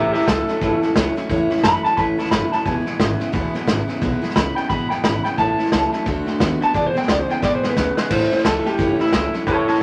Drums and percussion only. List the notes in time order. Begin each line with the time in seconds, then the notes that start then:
0.14 snare
0.21 snare
0.27 kick, snare, hi-hat pedal
0.48 snare
0.61 kick, snare
0.82 snare
0.96 kick, snare, hi-hat pedal
1.16 snare
1.30 kick, snare
1.50 snare
1.57 snare
1.64 kick, snare, hi-hat pedal
1.85 snare
1.98 kick, snare
2.19 snare
2.25 snare
2.31 kick, snare, hi-hat pedal
2.52 snare
2.66 kick, snare
2.86 snare
3.00 kick, snare, hi-hat pedal
3.20 snare
3.34 kick, snare
3.55 snare
3.68 kick, snare, hi-hat pedal
3.89 snare
4.02 kick, snare
4.23 snare
4.30 snare
4.36 kick, snare, hi-hat pedal
4.57 snare
4.70 kick, snare
4.91 snare
5.04 kick, snare, hi-hat pedal
5.25 snare
5.38 kick, snare
5.59 snare
5.66 snare
5.72 kick, snare, hi-hat pedal
5.93 snare
6.06 kick, snare
6.27 snare
6.40 kick, snare, hi-hat pedal
6.61 snare
6.74 kick, snare
6.96 snare
7.02 snare
7.08 kick, snare, hi-hat pedal
7.29 snare
7.42 kick, snare
7.63 snare
7.77 kick, snare, hi-hat pedal
7.97 snare
8.11 kick, snare, crash
8.32 snare
8.38 snare
8.45 kick, snare, hi-hat pedal
8.66 snare
8.79 kick, snare
9.00 snare
9.06 snare
9.13 kick, snare, hi-hat pedal
9.34 snare
9.46 kick, snare
9.68 snare
9.74 snare